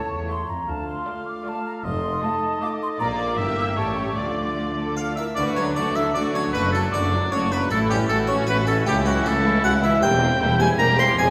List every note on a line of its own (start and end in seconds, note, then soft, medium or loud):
0.00 0.19 A3 medium
0.00 0.19 E4 medium
0.00 0.48 A4 medium
0.00 0.18 C#5 medium
0.00 0.48 C#5 medium
0.10 0.48 E2 medium
0.28 0.43 A3 soft
0.28 0.58 A3 soft
0.28 0.58 E4 soft
0.28 0.43 E4 soft
0.28 0.58 C#5 soft
0.28 0.48 C6 medium
0.48 0.56 F2 soft
0.48 0.68 A#5 medium
0.67 0.98 D2 medium
0.67 0.99 D2 medium
0.67 2.96 A3 soft
0.67 1.80 F4 soft
0.67 3.02 A4 medium
0.67 1.86 F5 soft
0.67 0.88 A5 medium
0.87 1.26 C6 medium
1.06 1.36 A3 medium
1.06 1.35 F4 medium
1.06 1.36 D5 soft
1.26 1.46 D6 medium
1.45 1.75 A3 medium
1.45 1.74 F4 medium
1.45 1.75 D5 medium
1.45 1.66 A5 medium
1.65 1.71 A#5 medium
1.84 2.15 F1 medium
1.84 2.15 F2 medium
1.84 3.00 D#4 medium
1.84 3.01 D#5 medium
1.84 2.22 C6 medium
2.22 2.52 A3 medium
2.22 2.52 F4 medium
2.22 2.51 D#5 medium
2.22 2.61 A5 medium
2.61 2.91 A3 medium
2.61 2.91 F4 medium
2.61 2.90 D#5 medium
2.61 2.67 D6 loud
2.81 2.87 C6 medium
2.99 3.39 A#1 medium
2.99 3.36 A#1 medium
2.99 3.36 A#2 medium
2.99 3.36 A#3 medium
2.99 3.77 A#3 medium
2.99 3.39 D4 medium
2.99 3.36 F4 medium
2.99 3.79 A#4 medium
2.99 3.36 D5 medium
2.99 3.39 D5 medium
2.99 3.06 A#5 medium
3.19 3.57 D6 medium
3.37 3.79 G1 medium
3.37 3.78 G1 medium
3.37 3.78 G2 medium
3.37 3.77 A#3 medium
3.37 3.79 E4 medium
3.37 3.76 G4 medium
3.37 3.76 E5 medium
3.58 3.64 E6 medium
3.76 4.17 A1 medium
3.76 4.16 A1 medium
3.76 4.18 A2 medium
3.76 4.18 G3 medium
3.76 4.16 A3 medium
3.76 4.17 C#4 medium
3.76 4.17 G4 medium
3.76 4.17 C#5 medium
3.76 4.18 C#5 medium
3.76 3.97 A5 medium
3.96 4.17 C#6 medium
4.16 5.15 D2 soft
4.16 5.16 D2 soft
4.16 5.16 D3 medium
4.16 4.97 F3 soft
4.16 5.16 A3 soft
4.16 4.98 D4 soft
4.16 4.53 F4 soft
4.16 5.16 F4 medium
4.16 5.15 D5 soft
4.16 4.97 D5 soft
4.16 4.97 D6 medium
4.57 4.65 F4 soft
4.77 5.17 A4 medium
4.97 5.07 F4 medium
4.97 5.16 F5 medium
4.97 5.15 F5 medium
5.15 5.27 E4 soft
5.15 5.25 A#4 soft
5.15 5.25 E5 medium
5.15 5.36 E5 medium
5.35 5.72 D2 medium
5.35 5.72 D3 medium
5.35 5.56 A3 soft
5.35 5.57 D4 medium
5.35 5.57 F#4 medium
5.35 5.74 B4 medium
5.35 5.45 D5 medium
5.35 5.56 D5 medium
5.56 5.77 F#3 medium
5.56 5.77 C#4 medium
5.56 5.77 D4 soft
5.56 5.65 C#5 medium
5.56 5.75 C#5 medium
5.76 6.11 D2 medium
5.76 6.11 D3 medium
5.76 5.97 A3 medium
5.76 5.86 D4 medium
5.76 5.96 F#4 medium
5.76 6.16 A4 medium
5.76 5.98 D5 medium
5.76 5.95 D5 medium
5.96 6.16 F#3 soft
5.96 6.16 D4 soft
5.96 6.05 E4 medium
5.96 6.14 E5 medium
6.14 6.50 D2 medium
6.14 6.50 D3 medium
6.14 6.34 A3 medium
6.14 6.35 D4 medium
6.14 6.54 F#4 medium
6.14 6.34 F#4 soft
6.14 6.23 D5 medium
6.14 6.34 D5 medium
6.33 6.55 F#3 medium
6.33 6.44 C#4 medium
6.33 6.54 D4 medium
6.33 6.52 C#5 medium
6.33 6.53 C#5 medium
6.53 6.88 F#1 medium
6.53 6.89 F#1 medium
6.53 6.89 F#2 medium
6.53 6.73 D3 medium
6.53 6.73 A3 soft
6.53 6.64 B3 medium
6.53 7.72 D4 medium
6.53 6.72 F#4 medium
6.53 6.72 B4 medium
6.53 6.73 B4 medium
6.72 6.93 F#3 medium
6.72 6.83 A3 medium
6.72 6.93 D4 medium
6.72 6.81 A4 medium
6.72 6.93 A4 medium
6.92 7.28 F#1 medium
6.92 7.28 F#2 medium
6.92 7.14 D3 medium
6.92 7.13 A3 medium
6.92 7.32 D4 medium
6.92 7.12 F#4 medium
6.92 7.33 D5 medium
6.92 7.30 D5 medium
7.11 7.33 F#3 medium
7.11 7.32 D4 medium
7.32 7.67 F#1 medium
7.32 7.67 F#2 medium
7.32 7.51 D3 medium
7.32 7.51 A3 medium
7.32 7.52 C#4 medium
7.32 7.50 F#4 medium
7.32 7.53 C#5 loud
7.32 7.51 C#5 medium
7.52 7.71 F#3 medium
7.52 7.61 B3 medium
7.52 7.71 D4 medium
7.52 7.70 B4 medium
7.52 7.71 B4 medium
7.70 8.05 A1 medium
7.70 8.05 A2 medium
7.70 7.90 A3 medium
7.70 7.89 E4 medium
7.70 8.09 E4 medium
7.70 7.89 A4 medium
7.70 7.80 A4 medium
7.90 8.10 E3 medium
7.90 7.99 G3 medium
7.90 8.10 C#4 medium
7.90 7.99 G4 medium
7.90 8.09 G4 medium
8.09 8.43 A1 medium
8.09 8.44 A1 medium
8.09 8.44 A2 medium
8.09 8.18 A3 medium
8.09 8.30 A3 medium
8.09 8.30 E4 medium
8.09 8.86 F#4 medium
8.09 8.18 A4 medium
8.09 8.28 A4 medium
8.27 8.49 E3 medium
8.27 8.49 C#4 medium
8.27 8.39 C#4 medium
8.27 8.46 C#5 medium
8.27 8.37 C#5 medium
8.47 8.82 A1 medium
8.47 8.83 A1 medium
8.47 8.83 A2 medium
8.47 8.67 A3 medium
8.47 8.58 B3 medium
8.47 8.66 E4 medium
8.47 8.66 B4 medium
8.47 8.58 B4 loud
8.67 8.87 E3 medium
8.67 8.77 A3 medium
8.67 8.86 C#4 medium
8.67 8.88 C#4 medium
8.67 8.85 A4 medium
8.67 8.77 A4 medium
8.86 9.21 C#2 medium
8.86 9.22 C#2 medium
8.86 8.95 G3 medium
8.86 9.05 A3 medium
8.86 9.05 C#4 medium
8.86 10.00 E4 medium
8.86 9.05 G4 medium
8.86 8.97 G4 medium
9.06 9.26 E3 medium
9.06 9.26 F#3 medium
9.06 9.26 C#4 medium
9.06 9.26 E4 medium
9.06 9.24 F#4 medium
9.06 9.30 F#4 medium
9.25 9.60 C#2 medium
9.25 9.64 A3 medium
9.25 9.46 A3 medium
9.25 9.45 C#4 medium
9.25 9.62 A4 medium
9.25 9.64 A4 loud
9.44 9.65 E3 medium
9.44 9.65 C#4 medium
9.44 9.64 E4 medium
9.63 9.98 C#2 medium
9.63 9.82 A3 medium
9.63 9.82 C#4 medium
9.63 9.73 F#4 medium
9.63 9.82 F#5 loud
9.63 9.73 F#5 loud
9.82 10.03 E3 medium
9.82 10.03 C#4 medium
9.82 10.02 E4 medium
9.82 10.03 E4 medium
9.82 10.02 E5 medium
9.82 10.01 E5 medium
10.01 10.36 E1 medium
10.01 10.36 E2 medium
10.01 10.11 G3 medium
10.01 10.11 A#3 medium
10.01 10.09 C4 medium
10.01 10.40 C4 medium
10.01 10.58 G4 medium
10.01 10.56 G5 loud
10.01 10.59 G5 loud
10.19 10.29 G3 medium
10.19 10.29 A#3 medium
10.19 10.27 C4 medium
10.38 10.74 E1 medium
10.38 10.75 E1 medium
10.38 10.75 E2 medium
10.38 10.49 G3 medium
10.38 10.49 A#3 medium
10.38 10.46 C4 medium
10.38 10.79 E4 medium
10.58 10.68 G3 medium
10.58 10.68 A#3 medium
10.58 10.66 C4 medium
10.58 10.78 G#4 medium
10.58 10.78 G#5 medium
10.58 10.70 G#5 loud
10.77 11.13 E1 medium
10.77 11.13 E2 medium
10.77 10.87 G3 medium
10.77 10.87 A#3 medium
10.77 10.85 C4 medium
10.77 11.17 G4 medium
10.77 10.89 A#4 loud
10.77 11.01 A#5 loud
10.77 10.97 A#5 loud
10.97 11.07 G3 medium
10.97 11.06 A#3 medium
10.97 11.05 C4 medium
10.97 11.07 C5 loud
10.97 11.17 C6 medium
10.97 11.18 C6 loud
11.16 11.30 F1 medium
11.16 11.30 F2 medium
11.16 11.26 F3 medium
11.16 11.26 G#3 medium
11.16 11.24 C4 medium
11.16 11.30 G#4 medium
11.16 11.30 G#4 loud
11.16 11.30 G#5 loud